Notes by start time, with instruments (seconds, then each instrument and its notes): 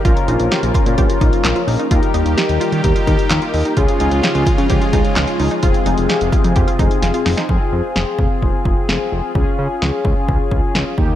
Already playing: analog synth pad A#3
0.05 analog synth bass A#1, analog synth pad C#3 F3 F4, analog polysynth C#4 F4 A#4, synth pluck F4, kick, closed hi-hat
0.17 closed hi-hat
0.28 analog synth bass A#1, synth pluck D#4, closed hi-hat
0.40 analog synth bass A#1, closed hi-hat
0.51 synth pluck G4, snare, closed hi-hat
0.63 analog synth bass A#1, closed hi-hat
0.74 synth pluck F4, kick, closed hi-hat
0.86 analog synth bass A#2, closed hi-hat
0.98 analog synth bass A#1, synth pluck G4, kick, closed hi-hat
1.10 synth pluck F4, closed hi-hat
1.21 analog synth bass A#1, synth pluck D#4, kick, closed hi-hat
1.33 closed hi-hat
1.44 analog synth bass A#1, synth pluck F4, snare, clap, closed hi-hat
1.56 synth pluck F4, closed hi-hat
1.68 analog synth bass A#1, synth pluck D#4, open hi-hat
1.79 synth pluck D#4, closed hi-hat
1.91 analog synth bass D#2, analog synth pad D#3 G3 G4, analog polysynth D#4 G4 A#4, synth pluck F4, kick, closed hi-hat
2.03 closed hi-hat
2.14 analog synth bass D#2, synth pluck D#4, closed hi-hat
2.26 analog synth bass D#2, closed hi-hat
2.38 synth pluck G4, snare, closed hi-hat
2.49 analog synth bass D#2, closed hi-hat
2.61 synth pluck F4, closed hi-hat
2.72 analog synth bass D#3, closed hi-hat
2.84 analog synth bass D#2, synth pluck G4, kick, closed hi-hat
2.96 synth pluck F4, closed hi-hat
3.07 analog synth bass D#2, synth pluck D#4, kick, closed hi-hat
3.19 closed hi-hat
3.30 analog synth bass D#2, synth pluck F4, snare, clap, closed hi-hat
3.42 synth pluck F4, closed hi-hat
3.54 analog synth bass D#2, synth pluck D#4, open hi-hat
3.65 synth pluck D#4, closed hi-hat
3.77 analog synth bass C#2, analog synth pad C#3 F3 G#3 F4, analog polysynth C#4 F4 G#4, synth pluck F4, kick, closed hi-hat
3.88 closed hi-hat
4.00 analog synth bass C#2, synth pluck D#4, closed hi-hat
4.11 analog synth bass C#2, closed hi-hat
4.23 synth pluck G4, snare, closed hi-hat
4.35 analog synth bass C#2, closed hi-hat
4.46 synth pluck F4, kick, closed hi-hat
4.58 analog synth bass C#3, closed hi-hat
4.70 analog synth bass C#2, synth pluck G4, kick, closed hi-hat
4.81 synth pluck F4, closed hi-hat
4.93 analog synth bass C#2, synth pluck D#4, kick, closed hi-hat
5.05 closed hi-hat
5.16 analog synth bass C#2, synth pluck F4, snare, clap, closed hi-hat
5.28 synth pluck F4, closed hi-hat
5.39 analog synth bass C#2, synth pluck D#4, open hi-hat
5.51 synth pluck D#4, closed hi-hat
5.63 analog synth bass F1, analog synth pad C3, analog polysynth C4 F4 G#4, synth pluck F4, kick, closed hi-hat
5.74 closed hi-hat
5.86 analog synth bass F1, synth pluck D#4, closed hi-hat
5.98 analog synth bass F1, closed hi-hat
6.09 synth pluck G4, snare, closed hi-hat
6.21 analog synth bass F1, closed hi-hat
6.32 synth pluck F4, kick, closed hi-hat
6.44 analog synth bass F2, closed hi-hat
6.56 analog synth bass F1, synth pluck G4, kick, closed hi-hat
6.67 synth pluck F4, closed hi-hat
6.79 analog synth bass F1, synth pluck D#4, kick, closed hi-hat
6.91 closed hi-hat
7.02 analog synth bass F1, synth pluck F4, snare, closed hi-hat
7.14 synth pluck F4, closed hi-hat
7.26 analog synth bass F1, synth pluck D#4, snare, open hi-hat
7.37 synth pluck D#4, snare, closed hi-hat
7.49 analog synth bass F1, analog polysynth C4 F4 G#4, kick
7.72 analog synth bass F2
7.96 analog synth bass F1, snare
8.19 analog synth bass F1, kick
8.42 analog synth bass F1, kick
8.65 analog synth bass F1, kick
8.89 analog synth bass F1, snare
9.12 analog synth bass F1
9.35 analog synth bass C#2, analog polysynth C#4 F4 G#4, kick
9.59 analog synth bass C#3
9.82 analog synth bass C#2, snare
10.05 analog synth bass C#2, kick
10.28 analog synth bass C#2, kick
10.51 analog synth bass C#2, kick
10.75 analog synth bass C#2, snare
10.98 analog synth bass D#2, analog polysynth A#3 D#4 G4, kick